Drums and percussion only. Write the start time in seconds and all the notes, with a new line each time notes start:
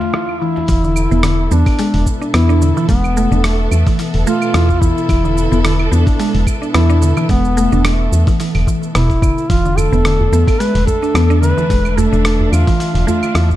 0.01 open hi-hat, djembe tone, cabasa
0.13 cross-stick, open hi-hat, djembe slap, cabasa
0.29 cabasa, claves
0.42 cabasa
0.56 open hi-hat, djembe tone, cabasa
0.68 kick, open hi-hat, cabasa
0.84 cabasa
0.96 cabasa, claves
1.11 cabasa
1.23 cross-stick, open hi-hat, cabasa
1.51 cabasa
1.66 kick, open hi-hat, cabasa, claves
1.79 open hi-hat, cabasa
1.94 open hi-hat
2.06 kick, cabasa
2.22 cabasa
2.34 cross-stick, open hi-hat, cabasa, claves
2.49 cabasa
2.62 cabasa
2.77 cabasa
2.89 kick, open hi-hat, cabasa
3.04 cabasa, claves
3.17 cabasa
3.32 cabasa
3.44 cross-stick, open hi-hat, cabasa
3.71 cabasa, claves
3.87 kick, open hi-hat, cabasa
3.99 open hi-hat, cabasa
4.14 open hi-hat
4.27 cabasa
4.42 cabasa, claves
4.54 cross-stick, open hi-hat, cabasa
4.69 kick, cabasa
4.82 kick, cabasa
4.98 cabasa
5.09 kick, open hi-hat, cabasa, claves
5.25 cabasa
5.38 cabasa
5.52 cabasa
5.65 cross-stick, open hi-hat, cabasa
5.79 claves
5.93 cabasa
6.07 kick, open hi-hat, cabasa
6.20 open hi-hat, cabasa
6.35 open hi-hat
6.47 kick, cabasa, claves
6.63 cabasa
6.74 cross-stick, open hi-hat, cabasa
6.90 cabasa
7.02 cabasa
7.17 cabasa, claves
7.29 kick, open hi-hat, cabasa
7.45 cabasa
7.57 cabasa
7.72 cabasa
7.85 cross-stick, open hi-hat, cabasa, claves
8.13 cabasa
8.27 kick, open hi-hat, cabasa
8.40 open hi-hat, cabasa
8.55 open hi-hat, claves
8.67 kick, cabasa
8.83 cabasa
8.95 cross-stick, open hi-hat, cabasa
9.10 kick, open hi-hat, cabasa
9.22 kick, cabasa, claves
9.38 cabasa
9.50 kick, open hi-hat, cabasa
9.65 cabasa
9.77 djembe bass, cabasa, claves
9.93 djembe tone, cabasa
10.05 cross-stick, open hi-hat, cabasa
10.20 djembe bass
10.32 djembe slap, cabasa
10.47 kick, open hi-hat, cabasa, claves
10.60 open hi-hat, cabasa
10.75 open hi-hat
10.87 kick, djembe slap, djembe tone, djembe bass, cabasa
11.02 djembe slap, cabasa
11.15 cross-stick, open hi-hat, djembe tone, cabasa, claves
11.31 cabasa
11.43 cabasa
11.58 djembe slap, djembe tone, cabasa
11.70 kick, open hi-hat, cabasa
11.85 cabasa, claves
11.98 djembe bass, cabasa
12.13 cabasa
12.25 cross-stick, open hi-hat, cabasa
12.40 djembe tone, djembe bass
12.53 djembe slap, cabasa, claves
12.67 kick, open hi-hat, cabasa
12.80 open hi-hat, cabasa
12.95 open hi-hat
13.08 djembe bass, cabasa
13.23 djembe tone, cabasa, claves
13.35 cross-stick, open hi-hat, cabasa
13.50 kick, cabasa